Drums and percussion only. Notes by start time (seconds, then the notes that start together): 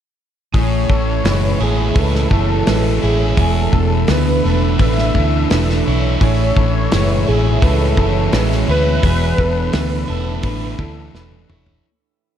0.54 kick, open hi-hat
0.90 kick
1.25 snare, open hi-hat
1.96 kick, open hi-hat
2.15 snare
2.31 kick
2.67 snare, open hi-hat
3.37 kick, open hi-hat
3.73 kick
4.08 snare, open hi-hat
4.79 kick, open hi-hat
4.98 snare
5.15 kick
5.50 snare, open hi-hat
5.69 snare
6.21 kick, open hi-hat
6.57 kick
6.92 snare, open hi-hat
7.62 kick, open hi-hat
7.97 kick
8.33 snare, open hi-hat
8.52 snare
9.03 kick, open hi-hat
9.38 kick
9.73 snare, open hi-hat
10.43 kick, open hi-hat
10.79 kick
11.15 snare
11.32 high tom
11.50 mid tom
11.66 floor tom